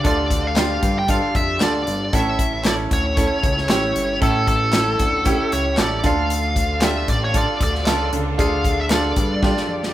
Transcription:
Already playing: grand piano D3 D4 F4 A4, string section D3 D4 F4 G4
0.04 analog synth bass D2, grand piano D4 F4 A4, lead electric guitar D5, kick, closed hi-hat
0.30 kick, closed hi-hat
0.47 lead electric guitar F5
0.56 grand piano D4 F4 G4, lead electric guitar F5, snare, clap, closed hi-hat
0.83 analog synth bass G2, kick, closed hi-hat
0.99 lead electric guitar G5
1.08 grand piano D4 F4 A4, lead electric guitar F5, kick, closed hi-hat
1.35 analog synth bass F2, lead electric guitar E5, kick, closed hi-hat
1.60 analog synth bass D2, grand piano D4 F4 A4, lead electric guitar D5, snare, clap, closed hi-hat
1.87 analog synth bass G1, closed hi-hat
2.12 analog synth bass A1, grand piano A2 C#4 E4 A4, string section A3 C#4 E4, lead electric guitar E5, kick, closed hi-hat
2.39 kick, closed hi-hat
2.65 grand piano C#4 E4 A4, lead electric guitar D5, snare, clap, closed hi-hat
2.91 analog synth bass D2, lead electric guitar C#5, kick, closed hi-hat
3.17 grand piano C#4 E4 A4, kick, closed hi-hat
3.43 analog synth bass C#2, kick, closed hi-hat
3.58 snare
3.69 analog synth bass A1, grand piano C#4 E4 G4, lead electric guitar C#5, snare, clap, closed hi-hat
3.96 analog synth bass G1, closed hi-hat
4.21 analog synth bass A1, grand piano A2 C#4 E4 A4, lead electric guitar A4, kick, closed hi-hat
4.47 lead electric guitar A4, kick, closed hi-hat
4.73 grand piano C#4 E4 A4, snare, clap, closed hi-hat
4.99 analog synth bass D2, kick, closed hi-hat
5.25 grand piano C#4 E4 G4, kick, closed hi-hat
5.52 analog synth bass C#2, lead electric guitar C#5, closed hi-hat
5.77 analog synth bass A1, grand piano C#4 E4 A4, lead electric guitar D5, snare, clap, closed hi-hat
6.03 analog synth bass D2, grand piano D3 D4 F4 A4, string section D3 D4 F4 A4, lead electric guitar F5, kick, closed hi-hat
6.30 closed hi-hat
6.56 kick, closed hi-hat
6.81 grand piano D4 F4 G4, lead electric guitar E5, snare, clap, closed hi-hat
7.08 analog synth bass A1, lead electric guitar D5, kick, closed hi-hat
7.24 lead electric guitar C#5
7.34 grand piano D4 F4 A4, lead electric guitar D5, kick, closed hi-hat
7.61 analog synth bass D2, lead electric guitar D5, kick, closed hi-hat
7.75 snare
7.86 analog synth bass C#2, grand piano D4 F4 A4, snare, clap, closed hi-hat
8.13 analog synth bass C#2, grand piano D3, closed hi-hat
8.38 analog synth bass D2, grand piano D4 F4 G#4, lead electric guitar F5, kick, closed hi-hat
8.45 grand piano A4
8.64 kick, closed hi-hat
8.80 lead electric guitar E5
8.90 grand piano D4 F4 A4, lead electric guitar D5, snare, clap, closed hi-hat
9.16 analog synth bass G2, kick, closed hi-hat
9.42 grand piano D4 F4 G4, kick, snare
9.57 snare
9.69 analog synth bass F2
9.83 snare

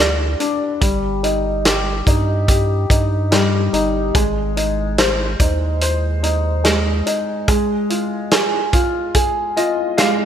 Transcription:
Already playing: sub bass D2, grand piano G3 D4 F4 B4
0.00 grand piano D5
0.40 grand piano D4, closed hi-hat
0.81 sub bass G1, grand piano G3, kick, closed hi-hat
1.23 grand piano D#4, closed hi-hat
1.65 grand piano G4, snare, closed hi-hat
2.07 sub bass G2, grand piano D#4, kick, closed hi-hat
2.48 grand piano G4, kick, closed hi-hat
2.90 sub bass G2, grand piano D#4, kick, closed hi-hat
3.31 grand piano G3, snare, closed hi-hat
3.73 sub bass G1, grand piano D#4, closed hi-hat
4.15 sub bass G#1, grand piano G#3, kick, closed hi-hat
4.56 grand piano D#4, closed hi-hat
4.98 grand piano C5, snare, closed hi-hat
5.40 sub bass D#2, grand piano D#4, kick, closed hi-hat
5.81 grand piano C5, closed hi-hat
6.23 grand piano D#4, closed hi-hat
6.64 grand piano G#3, snare, closed hi-hat
7.06 grand piano D#4, closed hi-hat
7.48 grand piano G#3, kick, closed hi-hat
7.90 grand piano F4, closed hi-hat
8.31 grand piano G#4, snare, closed hi-hat
8.73 grand piano F4, kick, closed hi-hat
9.14 grand piano G#4, kick, closed hi-hat
9.56 grand piano F4 D#5, closed hi-hat
9.98 grand piano G#3 F5, snare, closed hi-hat

